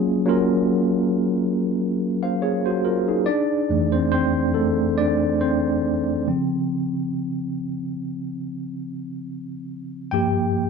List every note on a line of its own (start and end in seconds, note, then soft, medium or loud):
0.00 0.11 F#3 medium
0.00 0.15 A#3 medium
0.00 0.12 C#4 medium
0.00 0.12 F4 medium
0.00 0.13 G#4 medium
0.26 1.62 F#3 medium
0.26 1.62 A#3 medium
0.26 1.62 C#4 medium
0.26 1.63 F4 medium
0.26 1.63 A#4 medium
2.23 2.41 C5 soft
2.23 2.40 F5 medium
2.42 2.64 G#4 medium
2.42 2.64 C#5 medium
2.66 2.84 F#4 medium
2.66 2.83 C5 medium
2.85 3.07 F4 medium
2.85 3.07 A#4 medium
3.08 3.49 D#4 medium
3.08 3.48 G#4 medium
3.26 3.90 D4 medium
3.26 3.95 D5 loud
3.69 4.28 F2 soft
3.69 4.28 E3 soft
3.69 4.29 A3 medium
3.92 4.03 C4 medium
3.92 4.01 C5 medium
4.12 4.53 C4 medium
4.12 4.56 C5 medium
4.54 4.96 A3 medium
4.54 4.99 A4 medium
4.98 5.18 D4 medium
4.98 5.17 D5 medium
5.41 6.23 C4 medium
5.41 6.23 C5 medium
6.27 7.51 C#3 medium
6.27 7.51 F3 soft
6.27 7.52 C4 medium
10.11 10.70 G2 soft
10.11 10.70 F3 soft
10.11 10.70 A#3 medium
10.11 10.70 G4 medium
10.11 10.70 G5 medium